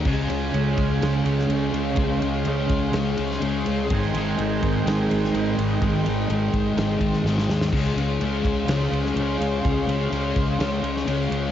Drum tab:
CC |x---------------|----------------|----------------|----------------|
RD |--x-x-x-x-x-x-x-|x-x-x-x-x-x-x-x-|x-x-x-x-x-x-x-x-|x-x-x-x-x-x-----|
SD |--------o--o----|--------o--o----|--------o--o----|--------o--ooooo|
BD |o-----o---------|o-----o---------|o-----o---------|o-----o---o-----|

CC |x---------------|----------------|
RD |--x-x-x-x-x-x-x-|x-x-x-x-x-x-x-x-|
SD |--------o--o----|--------o--o----|
BD |o-----o---------|o-----o---------|